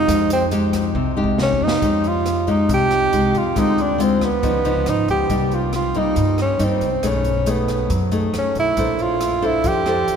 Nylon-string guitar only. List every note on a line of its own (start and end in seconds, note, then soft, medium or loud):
0.07 0.93 F3 medium
0.07 0.48 G#3 medium
0.07 0.48 D#4 medium
0.07 0.48 G4 medium
0.51 1.13 G#3 medium
0.51 1.14 D#4 medium
0.51 1.14 G4 medium
0.96 1.80 C3 medium
1.17 1.79 G#3 medium
1.17 1.79 D#4 medium
1.17 1.79 G4 medium
1.82 2.67 F3 medium
1.82 2.44 G#3 medium
1.82 2.44 D#4 medium
1.82 2.44 G4 medium
2.47 3.09 G#3 medium
2.47 3.09 D#4 medium
2.47 3.09 G4 medium
2.69 3.54 C3 medium
3.13 3.41 G#3 medium
3.13 3.41 D#4 medium
3.13 3.41 G4 medium
3.55 4.41 D3 medium
3.55 3.96 G#3 medium
3.55 3.96 C4 medium
3.55 3.96 F4 soft
3.98 4.28 G#3 medium
3.98 4.28 C4 medium
3.98 4.29 F4 medium
4.43 5.28 C#3 medium
4.43 4.61 F3 medium
4.43 4.61 B3 medium
4.43 4.62 D#4 medium
4.64 5.26 F3 medium
4.64 5.26 B3 medium
4.64 5.27 D#4 medium
5.30 6.15 C3 soft
5.30 5.73 G3 medium
5.30 5.73 A#3 soft
5.30 5.73 D#4 medium
5.95 6.57 G3 medium
5.95 6.57 A#3 medium
5.95 6.57 D#4 medium
6.16 7.01 G2 medium
6.59 6.88 G3 medium
6.59 6.88 A#3 medium
6.59 6.88 D#4 medium
7.03 7.88 B2 soft
7.03 7.31 A3 medium
7.03 7.31 D#4 medium
7.03 7.32 G#4 medium
7.46 7.90 A3 medium
7.46 7.90 D#4 medium
7.46 7.90 G#4 medium
7.90 8.75 F#3 medium
8.12 8.74 A3 medium
8.12 8.74 D#4 medium
8.12 8.74 G#4 medium
8.78 9.62 A#3 soft
8.78 9.21 D4 soft
8.78 9.21 A4 soft
8.78 9.21 C5 medium
9.42 9.82 D4 medium
9.42 9.82 A4 medium
9.42 9.83 C5 medium
9.64 10.16 F3 medium
9.86 10.16 D4 medium
9.86 10.16 A4 medium
9.86 10.16 C5 medium